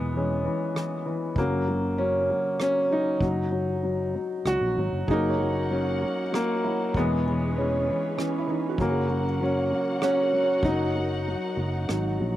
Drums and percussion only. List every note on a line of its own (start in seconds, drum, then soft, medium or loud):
0.13 ride soft
0.75 cross-stick medium
0.75 ride soft
1.36 kick medium
1.36 ride soft
1.66 ride medium
1.97 ride soft
2.59 cross-stick medium
2.59 ride soft
3.21 kick medium
3.51 ride soft
3.82 ride soft
4.44 cross-stick medium
4.44 ride soft
5.08 kick medium
5.08 ride soft
5.40 ride medium
5.71 ride soft
6.33 cross-stick medium
6.33 ride soft
6.94 kick medium
6.94 ride soft
7.25 ride medium
7.56 ride soft
8.17 cross-stick medium
8.17 ride soft
8.78 kick medium
9.09 ride soft
9.40 ride soft
10.02 cross-stick medium
10.63 kick medium
10.94 ride medium
11.25 ride soft
11.88 cross-stick medium
11.88 ride soft